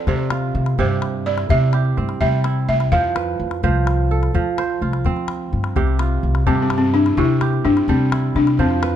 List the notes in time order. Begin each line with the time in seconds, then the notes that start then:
Already playing: F3 C4 F4 A4
0.07 C3 C5, calabash thump, calabash click
0.19 calabash click
0.30 F4, calabash click
0.55 C3
0.66 calabash click
0.78 G2 C3 G4 C5, calabash thump
1.02 calabash click
1.26 E4 D5
1.38 calabash click
1.49 C3 E5, calabash thump, calabash click
1.73 G4, calabash click
1.85 calabash click
1.97 G2 C4, calabash click
2.09 calabash click
2.21 C3 G3 E5, calabash thump
2.44 E4, calabash click
2.68 C2 E5
2.80 calabash click
2.92 F2 F3 C5 F5, calabash thump
3.16 B4, calabash click
3.40 F2
3.51 calabash click
3.63 C2 F3 C5, calabash thump
3.75 calabash click
3.87 calabash click
4.11 A4, calabash click
4.23 calabash click
4.34 F3, calabash thump
4.58 C5, calabash click
4.70 calabash click
4.82 C2 F4
4.93 calabash click
5.05 F3 C4, calabash thump, calabash click
5.17 calabash click
5.28 calabash click
5.53 G2
5.64 calabash click
5.76 C2 C3 G4, calabash thump, calabash click
5.87 calabash click
5.99 F4, calabash click
6.23 C2
6.35 calabash click
6.46 G2 C3 C4 G4, calabash thump
6.62 C4
6.70 calabash click
6.78 C4
6.94 D4 E4
7.06 calabash click
7.17 C3 E4, calabash thump, calabash click
7.41 G4, calabash click
7.53 calabash click
7.65 G2 C4 D4, calabash click
7.77 calabash click
7.88 C3 G3 C4, calabash thump
8.12 E4, calabash click
8.35 C3 D4
8.47 calabash click
8.59 F2 F3 C4 C5, calabash thump, calabash click
8.71 calabash click
8.83 B4, calabash click